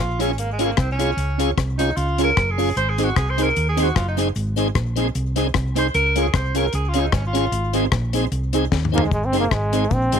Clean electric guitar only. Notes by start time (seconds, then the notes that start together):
0.19 C#4 F4 G#4 C#5
0.59 C#4 F4 G#4 C#5
0.99 C#4 F4 G#4 C#5
1.38 C#4 F4 G#4 C#5
1.56 muted clean electric guitar stroke
1.78 C#4 F4 G#4 C#5
2.18 C#4 F4 G#4 C#5
2.58 C#4 F4 G#4 C#5
2.98 C4 D#4 G#4 C5
3.16 muted clean electric guitar stroke
3.38 C4 D#4 G#4 C5
3.77 C4 D#4 G#4 C5
4.17 C4 D#4 G#4 C5
4.58 C4 D#4 G#4 C5
4.75 muted clean electric guitar stroke
4.97 C4 D#4 G#4 C5
5.36 C4 D#4 G#4 C5
5.55 muted clean electric guitar stroke
5.75 C4 D#4 G#4 C5
6.16 C#4 F4 G#4 C#5
6.34 muted clean electric guitar stroke
6.54 C#4 F4 G#4 C#5
6.95 C#4 F4 G#4 C#5
7.34 C#4 F4 G#4 C#5
7.74 C4 D#4 G#4 C5
7.93 muted clean electric guitar stroke
8.14 C4 D#4 G#4 C5
8.53 C4 D#4 G#4 C5
8.73 muted clean electric guitar stroke
8.94 C4 D#4 G#4 C5
9.33 C4 D#4 G#4 C5
9.73 C4 D#4 G#4 C5
10.13 C4 D#4 G#4 C5